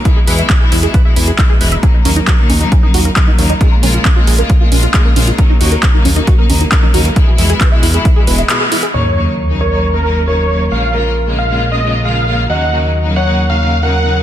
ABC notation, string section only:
X:1
M:4/4
L:1/16
Q:1/4=135
K:Ebm
V:1 name="String section" clef=bass
[=B,,=E,^G,=E]2 [B,,E,G,E]2 z [B,,E,G,E]2 [B,,E,G,E]2 [B,,E,G,E] [B,,E,G,E]2 [B,,E,G,E]2 [B,,E,G,E]2 | [D,G,B,E]2 [D,G,B,E]2 z [D,G,B,E]2 [D,G,B,E]2 [D,G,B,E] [D,G,B,E]2 [D,G,B,E]2 [D,G,B,E]2 | [D,A,B,F]2 [D,A,B,F]2 z [D,A,B,F]2 [D,A,B,F]2 [D,A,B,F] [D,A,B,F]2 [D,A,B,F]2 [D,A,B,F]2 | [D,G,B,E]2 [D,G,B,E]2 z [D,G,B,E]2 [D,G,B,E]2 [D,G,B,E] [D,G,B,E]2 [D,G,B,E]2 [D,G,B,E]2 |
[=B,,=E,^G,=E]2 [B,,E,G,E]2 z [B,,E,G,E]2 [B,,E,G,E]2 [B,,E,G,E] [B,,E,G,E]2 [B,,E,G,E]2 [B,,E,G,E]2 | [D,G,B,E]2 [D,G,B,E]2 z [D,G,B,E]2 [D,G,B,E]2 [D,G,B,E] [D,G,B,E]2 [D,G,B,E]2 [D,G,B,E]2 | [D,A,B,F]2 [D,A,B,F]2 z [D,A,B,F]2 [D,A,B,F]2 [D,A,B,F] [D,A,B,F]2 [D,A,B,F]2 [D,A,B,F]2 | [D,G,B,E]2 [D,G,B,E]2 z [D,G,B,E]2 [D,G,B,E]2 [D,G,B,E] [D,G,B,E]2 [D,G,B,E]2 [D,G,B,E]2 |]